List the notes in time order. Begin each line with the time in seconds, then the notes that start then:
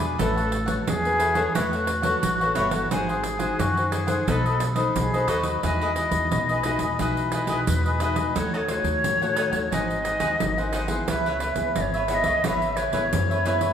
Already playing: E2 B2 G#3 D4 F#4
0.00 G#4 B4 D5
0.18 A1 A3 C#4 E4 F#4 A4 B4 C#5 F#5, pandeiro
0.36 A4 C#5 F#5, pandeiro
0.51 muted cavaquinho stroke, pandeiro
0.66 C#4 F#4 B4 C#5 F#5, pandeiro
0.80 A4
0.87 E2 E3 G#4, pandeiro
1.05 C#4 F#4 B4, pandeiro
1.19 E4 A4 C#5 F#5, pandeiro
1.34 C#4 F#4 A4 B4 C#5 F#5, pandeiro
1.55 E2 A3 C#4 E4 F#4 A4 B4 C#5 F#5, pandeiro
1.72 A4 C#5 F#5, pandeiro
1.87 muted cavaquinho stroke, pandeiro
2.02 C#4 F#4 A4 B4 C#5 F#5, pandeiro
2.23 A1 E3, pandeiro
2.41 C#4 F#4 A4 B4 C#5 F#5, pandeiro
2.55 G1 E4 A4 C#5 F#5, pandeiro
2.71 A4 C#5 F#5, pandeiro
2.91 G#1 G#3 D#4 F#4 G#4 C5 F#5, pandeiro
3.08 G#4 C5 F#5, pandeiro
3.23 muted cavaquinho stroke, pandeiro
3.39 D#4 F#4 G#4 C5 F#5, pandeiro
3.59 F#2 D#3 F#4, pandeiro
3.77 D#4 F#4 C5, pandeiro
3.91 F#4 G#4 C5 F#5, pandeiro
4.07 D#4 G#4 A4 C5 F#5, pandeiro
4.27 B1 B3 D#4 A4 B4 D#5, pandeiro
4.45 A4 B4 D#5, pandeiro
4.60 muted cavaquinho stroke, pandeiro
4.75 D#4 A4 B4 C5 D#5, pandeiro
4.95 B1 F#3 A#4, pandeiro
5.00 G#4
5.13 D#4 A4 B4 C5 D#5, pandeiro
5.27 D#2 D#4 F#4 A4 B4 D#5, pandeiro
5.43 A4 B4 D#5, pandeiro
5.63 E2 E3 G#3 D#4 E4 F#4 G#4 B4 D#5, pandeiro
5.81 E4 G#4 B4 D#5, pandeiro
5.96 E4 G#4 B4 D#5, pandeiro
6.11 E2 G#3 D#4 F#4, pandeiro
6.31 B1 B2, pandeiro
6.49 G#4 B4 D#5, pandeiro
6.63 G#3 D#4 E4 F#4 G#4 B4 D#5, pandeiro
6.79 E2 G#4 B4 D#5, pandeiro
6.99 B1 E3 G#3 D#4 E4 F#4 G#4 B4 D#5, pandeiro
7.17 pandeiro
7.32 E4 G#4 B4 D#5, pandeiro
7.47 B1 G#3 D#4 E4 F#4 G#4 B4 D#5, pandeiro
7.67 E2 B2, pandeiro
7.86 G#4 B4 D#5, pandeiro
8.00 G#3 D#4 E4 F#4 G#4 B4 D#5, pandeiro
8.15 G#4 B4 D#5, pandeiro
8.35 D#2 D#3 A3 C#4 D#4 F#4 A4 C#5 F#5, pandeiro
8.53 D#4 A4 C#5 D#5 F#5, pandeiro
8.57 C#5
8.68 A3 C#4 D#4 F#4 A4 C5 C#5 F#5, pandeiro
8.74 C#5
8.84 D#2, pandeiro
9.04 A2 D#3, pandeiro
9.22 A3 C#4 F#4 A4 C#5 F#5, pandeiro
9.36 D#4 A4 C#5 F#5, pandeiro
9.52 D#2 A4 C#5 F#5, pandeiro
9.72 G#1 G#2 F#3 C4 D#4 G#4 C5 D#5 F#5, pandeiro
9.90 pandeiro
10.04 D#4 G#4 C5 F#5, pandeiro
10.19 D#2 F#3 C4 D#4 G#4 C5 F#5, pandeiro
10.40 G#1 D#3 F#3 C4 D#4, pandeiro
10.58 F#3 C4 D#4 G#4 C5 F#5, pandeiro
10.72 D#4 G#4 C5 F#5, pandeiro
10.88 B3 E4 G#4 C5 F#5, pandeiro
11.08 C#2 C#3 E4 B4 C#5 E5, pandeiro
11.26 E4 B4 C#5 E5, pandeiro
11.40 E4 B4 C#5 E5, pandeiro
11.56 C#2 B3 E4 G#4, pandeiro
11.76 G#1 G#2 D#5, pandeiro
11.81 C#5
11.94 B4 C#5 E5, pandeiro
12.08 B3 E4 G#4 B4 C#5 E5 F#5, pandeiro
12.14 D#5
12.24 C#2 B4 C#5 E5, pandeiro
12.44 G#1 C#3 B3 E4 G#4 B4 C#5 E5 F#5, pandeiro
12.48 E5
12.62 pandeiro
12.76 E4 B4 C#5 E5, pandeiro
12.93 G#1 B3 E4 G#4 B4 C#5 E5, pandeiro
13.13 F#2 G#2, pandeiro
13.30 B4 C#5 E5, pandeiro
13.45 B3 E4 G#4 B4 C#5 E5, pandeiro
13.60 B4 C#5 E5, pandeiro